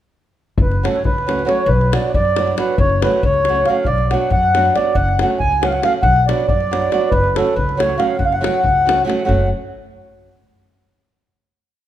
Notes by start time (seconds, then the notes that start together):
0.58 F#1 B4, davul low
0.71 davul high
0.83 F#3 A3 C#4 F#4 A4, davul high
0.95 C#5, davul high
1.04 C#2 B4, davul low
1.18 davul high
1.27 F#3 A3 C#4 F#4, davul high
1.39 davul high
1.45 F#3 A3 C#4 F#4 C#5, davul high
1.66 B1 B4, davul low
1.81 davul high
1.92 F#3 B3 D4 F#4 D5, davul high
2.03 davul high
2.14 F#2 D5, davul low
2.25 davul high
2.36 F#3 B3 D4 F#4, davul high
2.48 davul high
2.57 F#3 B3 D4 F#4 B4, davul high
2.78 F#1 C#5, davul low
2.90 davul high
3.02 F#3 A3 C#4 F#4 B4, davul high
3.12 davul high
3.23 C#2 C#5, davul low
3.34 davul high
3.45 F#3, davul high
3.49 A3 C#4 F#4
3.55 davul high
3.66 F#3 A3 C#4 F5, davul high
3.70 F#4
3.85 B1 D5, davul low
3.98 davul high
4.11 F#3 B3 D4 F#4 F#5, davul high
4.21 davul high
4.30 F#2 F#5, davul low
4.43 davul high
4.55 F#3 B3 D4 F#4, davul high
4.65 davul high
4.75 F#3 B3 D4 F#4 D5, davul high
4.85 davul high
4.94 F#1 F#5, davul low
5.08 davul high
5.19 F#3 A3 C#4 F#4 F#5, davul high
5.30 davul high
5.39 C#2 G#5, davul low
5.52 davul high
5.62 F#3 A3 C#4 F#4 F#5, davul high
5.66 F5
5.71 F#5, davul high
5.82 F#3 A3 C#4 F#4 F5, davul high
6.03 B1 F#5, davul low
6.16 davul high
6.27 F#3 B3 D4 F#4 D5, davul high
6.40 davul high
6.48 F#2 D5, davul low
6.61 davul high
6.71 F#3 B3 D4 F#4, davul high
6.82 davul high
6.92 F#3 B3 D4 F#4, davul high
7.10 F#1 B4, davul low
7.24 davul high
7.36 F#3 A3 C#4 F#4 A4, davul high
7.47 davul high
7.55 C#2 B4, davul low
7.69 davul high
7.77 F#3 A3 C#4 F#4 C#5, davul high
7.89 davul high
7.97 F#3 A3 C#4 F#4 F5, davul high
8.18 F#1 F#5, davul low
8.26 F5
8.32 F#5, davul high
8.41 F#3 A3 C#4 F#4, davul high
8.54 davul high
8.63 C#2, davul low
8.85 F#3 A3 C#4 F#4, davul high
9.05 F#3 A3 C#4 F#4
9.10 davul high
9.19 davul high
9.25 F#1 F#3 A3 C#4 F#4 F#5, davul low